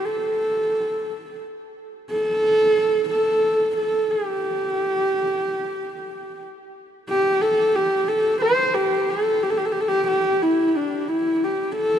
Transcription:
0, 0, Header, 1, 2, 480
1, 0, Start_track
1, 0, Tempo, 668151
1, 1247, Time_signature, 4, 2, 24, 8
1, 8614, End_track
2, 0, Start_track
2, 0, Title_t, "Horsehead fiddle"
2, 0, Program_c, 0, 110
2, 32, Note_on_c, 0, 69, 73
2, 999, Note_off_c, 0, 69, 0
2, 1511, Note_on_c, 0, 69, 104
2, 2190, Note_off_c, 0, 69, 0
2, 2222, Note_on_c, 0, 69, 86
2, 2665, Note_off_c, 0, 69, 0
2, 2710, Note_on_c, 0, 69, 82
2, 2950, Note_on_c, 0, 67, 81
2, 2961, Note_off_c, 0, 69, 0
2, 4620, Note_off_c, 0, 67, 0
2, 5099, Note_on_c, 0, 67, 99
2, 5327, Note_on_c, 0, 69, 96
2, 5338, Note_off_c, 0, 67, 0
2, 5570, Note_on_c, 0, 67, 93
2, 5581, Note_off_c, 0, 69, 0
2, 5803, Note_on_c, 0, 69, 93
2, 5814, Note_off_c, 0, 67, 0
2, 6043, Note_off_c, 0, 69, 0
2, 6047, Note_on_c, 0, 72, 94
2, 6280, Note_on_c, 0, 67, 89
2, 6291, Note_off_c, 0, 72, 0
2, 6536, Note_on_c, 0, 69, 87
2, 6547, Note_off_c, 0, 67, 0
2, 6777, Note_on_c, 0, 67, 83
2, 6787, Note_off_c, 0, 69, 0
2, 6825, Note_on_c, 0, 69, 82
2, 6835, Note_off_c, 0, 67, 0
2, 6879, Note_on_c, 0, 67, 82
2, 6889, Note_off_c, 0, 69, 0
2, 6937, Note_on_c, 0, 69, 78
2, 6948, Note_off_c, 0, 67, 0
2, 6984, Note_on_c, 0, 67, 77
2, 6995, Note_off_c, 0, 69, 0
2, 7045, Note_on_c, 0, 69, 77
2, 7056, Note_off_c, 0, 67, 0
2, 7101, Note_on_c, 0, 67, 101
2, 7112, Note_off_c, 0, 69, 0
2, 7235, Note_off_c, 0, 67, 0
2, 7239, Note_on_c, 0, 67, 92
2, 7484, Note_on_c, 0, 64, 84
2, 7495, Note_off_c, 0, 67, 0
2, 7731, Note_on_c, 0, 62, 78
2, 7742, Note_off_c, 0, 64, 0
2, 7959, Note_on_c, 0, 64, 87
2, 7970, Note_off_c, 0, 62, 0
2, 8219, Note_on_c, 0, 67, 78
2, 8229, Note_off_c, 0, 64, 0
2, 8443, Note_off_c, 0, 67, 0
2, 8447, Note_on_c, 0, 69, 91
2, 8614, Note_off_c, 0, 69, 0
2, 8614, End_track
0, 0, End_of_file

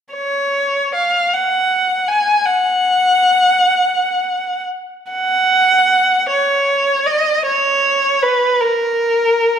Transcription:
0, 0, Header, 1, 2, 480
1, 0, Start_track
1, 0, Key_signature, 6, "major"
1, 0, Tempo, 823045
1, 75, Time_signature, 6, 3, 24, 8
1, 554, Tempo, 764331
1, 1994, Tempo, 837989
1, 2474, Tempo, 1060071
1, 2954, Tempo, 777202
1, 5703, End_track
2, 0, Start_track
2, 0, Title_t, "Violin"
2, 0, Program_c, 0, 40
2, 76, Note_on_c, 0, 73, 32
2, 531, Note_off_c, 0, 73, 0
2, 554, Note_on_c, 0, 77, 34
2, 798, Note_on_c, 0, 78, 33
2, 799, Note_off_c, 0, 77, 0
2, 1264, Note_on_c, 0, 80, 38
2, 1269, Note_off_c, 0, 78, 0
2, 1500, Note_on_c, 0, 78, 47
2, 1507, Note_off_c, 0, 80, 0
2, 2722, Note_off_c, 0, 78, 0
2, 2946, Note_on_c, 0, 78, 49
2, 3653, Note_off_c, 0, 78, 0
2, 3676, Note_on_c, 0, 73, 39
2, 4141, Note_on_c, 0, 75, 39
2, 4154, Note_off_c, 0, 73, 0
2, 4387, Note_off_c, 0, 75, 0
2, 4390, Note_on_c, 0, 73, 44
2, 4857, Note_on_c, 0, 71, 39
2, 4858, Note_off_c, 0, 73, 0
2, 5099, Note_on_c, 0, 70, 44
2, 5102, Note_off_c, 0, 71, 0
2, 5703, Note_off_c, 0, 70, 0
2, 5703, End_track
0, 0, End_of_file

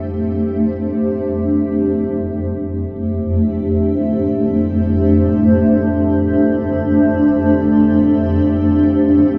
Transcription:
0, 0, Header, 1, 2, 480
1, 0, Start_track
1, 0, Key_signature, -1, "major"
1, 0, Tempo, 500000
1, 9008, End_track
2, 0, Start_track
2, 0, Title_t, "Ambient pad"
2, 0, Program_c, 0, 92
2, 0, Note_on_c, 0, 41, 59
2, 0, Note_on_c, 0, 57, 74
2, 0, Note_on_c, 0, 62, 71
2, 0, Note_on_c, 0, 67, 69
2, 0, Note_on_c, 0, 72, 76
2, 0, Note_on_c, 0, 76, 67
2, 1682, Note_off_c, 0, 41, 0
2, 1694, Note_on_c, 0, 41, 59
2, 1695, Note_off_c, 0, 62, 0
2, 1695, Note_off_c, 0, 72, 0
2, 1697, Note_off_c, 0, 76, 0
2, 1703, Note_off_c, 0, 57, 0
2, 1704, Note_off_c, 0, 67, 0
2, 1962, Note_on_c, 0, 57, 68
2, 2047, Note_on_c, 0, 67, 61
2, 2289, Note_on_c, 0, 76, 63
2, 2370, Note_on_c, 0, 62, 82
2, 2411, Note_on_c, 0, 72, 74
2, 8808, Note_off_c, 0, 76, 0
2, 9008, Note_off_c, 0, 41, 0
2, 9008, Note_off_c, 0, 57, 0
2, 9008, Note_off_c, 0, 62, 0
2, 9008, Note_off_c, 0, 67, 0
2, 9008, Note_off_c, 0, 72, 0
2, 9008, End_track
0, 0, End_of_file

